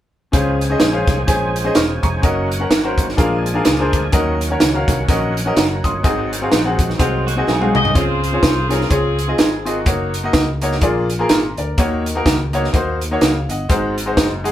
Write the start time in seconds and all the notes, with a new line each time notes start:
0.32 C#2 C#3 F3 G#3 C4 C#4 G#4 C5 F5, kick, closed hi-hat
0.61 closed hi-hat
0.70 C#4 G#4 C5 D#5
0.80 A#1, snare, closed hi-hat
0.92 C#4 G#4 C5 F5
1.07 C2, kick, snare, closed hi-hat
1.27 A#1 C#4 G#4 C5 G#5, kick, closed hi-hat
1.56 closed hi-hat
1.64 C#4 G#4 C5 D#5
1.75 E1 C#6 F6, snare, closed hi-hat
2.03 F1 A#5 C#6, kick, closed hi-hat
2.22 F#1 D#3 F#3 A#3 C#4 F#4 A#4 D#5, kick, closed hi-hat
2.52 closed hi-hat
2.60 C#4 F#4 A#4 F#5
2.70 G#1, snare, closed hi-hat
2.84 C#4 F#4 A#4 C5
2.98 kick, closed hi-hat
3.09 snare
3.17 A#1 A#2 F3 G#3 D4 G#4 A#4 F5, kick, closed hi-hat
3.46 closed hi-hat
3.54 D4 G#4 A#4 F5
3.65 C#2, snare, closed hi-hat
3.78 D4 G#4 A#4 C5
3.93 D2, kick, closed hi-hat
4.12 D#2 D#3 F#3 C#4 F#4 A#4 D#5, kick, closed hi-hat
4.41 closed hi-hat
4.50 C#4 F#4 A#4 C#5
4.60 C#2, snare, closed hi-hat
4.74 C#4 F#4 A#4 F5
4.88 C2, kick, snare, closed hi-hat
5.08 A#1 C#4 F#4 A#4 D#5, kick, closed hi-hat
5.37 closed hi-hat
5.46 C#4 F#4 A#4 D#5
5.56 F#1 F#5 A#5, snare, closed hi-hat
5.84 G1 C6 D#6, kick, closed hi-hat
6.03 G#1 G#2 F#3 G#3 C4 F#4 G#4 D#5, kick, closed hi-hat
6.33 closed hi-hat
6.41 C4 F#4 G#4 F5
6.52 A#1, snare, closed hi-hat
6.65 C4 F#4 G#4 F#5
6.79 kick, closed hi-hat
6.90 snare
6.98 C2 G#3 C4 F4 F#4 G#4 C5, kick, closed hi-hat
7.27 A#3 F#4, closed hi-hat
7.37 C4 F#4 G#4 D#5
7.47 B1 C4 G#4, snare
7.60 C4 F#4 G#4 F5, high tom
7.74 C2 D#5, mid tom
7.85 floor tom
7.94 C#2 C#3 C4 F4 G#4 C5 C#5, kick, closed hi-hat
8.24 closed hi-hat
8.32 C4 F4 G#4 C#5
8.43 C2, kick, snare, closed hi-hat
8.68 C4 F4 G#4 A#4 C#5, snare, closed hi-hat
8.81 snare
8.89 C#2 C4 F4 G#4 C#5, kick, closed hi-hat
9.19 closed hi-hat
9.27 C4 F4 G#4 D#5
9.38 G#1 G#4, snare, closed hi-hat
9.65 A#3 C4 D#4 F4 F#4 G#4 D#5, closed hi-hat
9.86 F#1 A#3 D#4 F#4 C#5, kick, closed hi-hat
10.14 closed hi-hat
10.23 A#3 D#4 F#4 D#5
10.33 C#2, kick, snare, closed hi-hat
10.62 A#3 D#4 F#4 C#5, closed hi-hat
10.72 snare
10.81 A#1 A#2 A#3 F4 G#4 D5, kick, closed hi-hat
11.10 closed hi-hat
11.19 A#3 F4 G#4 A#4
11.29 G#1 A#5, snare, closed hi-hat
11.58 D2 A#4 D5, closed hi-hat
11.78 D#2 D#3 A#3 D#4 F#4 C#5, kick, closed hi-hat
12.06 closed hi-hat
12.15 A#3 D#4 F#4 A#4
12.26 C#2, kick, snare, closed hi-hat
12.53 A#3 D#4 F#4 C#5, closed hi-hat
12.64 snare
12.73 D#2 A#3 D#4 F#4 C5, kick, closed hi-hat
13.01 closed hi-hat
13.11 A#3 D#4 F#4 C#5
13.21 C#2 C#5 F5, snare, closed hi-hat
13.49 G1 D#5 F#5, closed hi-hat
13.69 G#1 G#2 G#3 D#4 F#4 C5, kick, closed hi-hat
13.98 closed hi-hat
14.06 G#3 D#4 F#4 C5
14.17 F#1, kick, snare, closed hi-hat
14.44 G#3 D#4 F#4 G#4, closed hi-hat